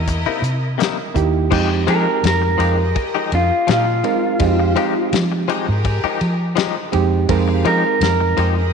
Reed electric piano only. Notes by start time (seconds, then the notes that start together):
1.15 A#3 D#4 E4 G4
1.51 G#3 C4 D#4 G4
4.04 G#3 C4 D#4 A#4
4.39 G#3 C4 D#4 G4
6.93 G#3 C4 D#4 G4
7.29 G#3 C4 D#4 A#4